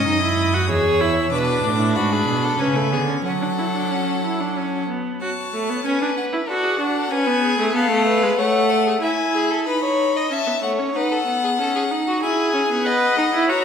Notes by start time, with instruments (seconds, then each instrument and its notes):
Already playing: violin D#5 D#6
0.07 cello F#2, viola D#4
0.22 viola E4
0.54 viola F#4
0.69 cello E2, viola G#4, violin C#5 E6
1.01 viola E4
1.32 cello B2, viola D4, violin B4 D6
1.38 violin E6
1.46 violin D6
1.63 cello A2, violin D4
1.80 violin E4
1.95 cello G#2, violin F#4 B5
2.12 violin G#4
2.27 cello B2
2.45 violin A4
2.59 cello C#3, viola C#4, violin B4 G#5
2.76 viola A3
2.92 cello D3, viola B3, violin G#4
3.08 viola C#4
3.24 cello F#3, viola C#4, violin A4 F#5
3.42 viola D4
3.58 viola E4
3.75 viola D4
3.91 viola C#4
4.24 viola E4
4.40 viola D4
4.57 viola C#4
4.89 viola B3
5.22 viola F#4, violin C#5 A5
5.53 viola A3
5.70 viola B3
5.86 viola C#4, violin B4 G#5
6.02 viola D4
6.17 violin F#5
6.33 viola E4
6.48 viola F#4, violin A4 D5
6.65 violin G#4
6.80 viola D4, violin F#4 F#5
6.96 violin A4
7.11 viola C#4, violin B4 G#5
7.27 viola B3
7.43 violin G#4
7.59 viola A3
7.75 viola B3, violin A4 F5
7.91 viola A3
8.07 violin B4
8.23 viola G#3
8.38 viola A3, violin C#5 F#5
8.70 violin A4
8.87 violin G#4
9.02 viola E4, violin E5 G#5
9.35 violin G#4
9.51 violin A4
9.67 viola D#4, violin B4 B5
9.84 violin C#5
10.17 violin D#5
10.31 viola C#4, violin E5 A5
10.47 viola B3
10.63 viola A3, violin C#5 F#5
10.79 viola C#4
10.95 viola D#4, violin B4 F#5
11.12 violin A4
11.27 viola B3
11.44 violin G#4
11.59 viola C#4, violin A4
11.76 violin G#4
11.91 viola D#4
12.08 violin F#4
12.22 viola E4, violin G#4 G#5
12.54 viola C#4
12.70 viola B3
12.85 viola B4, violin D#5 F#5
13.18 viola D#4
13.33 viola E4
13.49 viola F#4, violin C#5 A#5